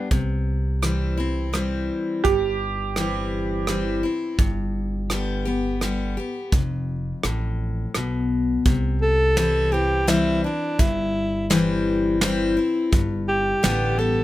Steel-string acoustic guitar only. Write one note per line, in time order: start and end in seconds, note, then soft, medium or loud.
0.11 1.47 C3 medium
0.82 1.16 E3 soft
0.82 1.17 G3 medium
0.82 1.17 C4 medium
0.82 1.16 E4 medium
1.17 1.53 C4 medium
1.17 1.52 E4 medium
1.53 2.21 E3 medium
1.53 2.21 G3 medium
1.53 2.22 C4 medium
1.53 2.22 E4 medium
2.25 3.60 G2 medium
2.97 3.64 E3 medium
2.97 3.65 G3 medium
2.97 3.65 C4 medium
2.97 3.65 E4 medium
3.67 4.02 E3 medium
3.67 4.02 G3 medium
3.67 4.02 C4 medium
3.67 4.02 E4 medium
4.03 4.38 C4 soft
4.03 4.37 E4 soft
4.39 5.74 G2 medium
5.10 5.44 D3 soft
5.10 5.45 G3 medium
5.10 5.45 B3 medium
5.10 5.44 G4 medium
5.45 5.81 B3 soft
5.45 5.80 G4 medium
5.81 6.16 D3 medium
5.81 6.16 G3 medium
5.81 6.16 B3 medium
5.81 6.16 G4 medium
6.17 6.52 B3 soft
6.17 6.51 G4 soft
6.53 7.88 F2 medium
7.24 7.92 A2 medium
7.95 8.63 B2 medium
8.66 10.01 C3 medium
9.37 9.71 E3 medium
9.37 9.72 G3 medium
9.37 9.72 C4 medium
9.37 9.71 E4 medium
9.72 10.08 C4 medium
9.72 10.07 E4 medium
10.07 10.42 E3 medium
10.07 10.42 G3 medium
10.07 10.43 C4 medium
10.07 10.43 E4 medium
10.44 10.79 C4 soft
10.44 10.78 E4 soft
10.80 12.15 G2 medium
11.50 12.18 E3 medium
11.50 12.18 G3 medium
11.50 12.19 C4 medium
11.50 12.19 E4 medium
12.21 12.56 E3 medium
12.21 12.56 G3 medium
12.21 12.56 C4 loud
12.21 12.55 E4 medium
12.57 12.92 C4 soft
12.57 12.91 E4 medium
12.93 14.24 G2 medium
13.63 13.98 D3 medium
13.63 13.98 G3 medium
13.63 13.98 B3 medium
13.63 13.97 G4 medium
13.99 14.24 B3 soft
13.99 14.24 G4 medium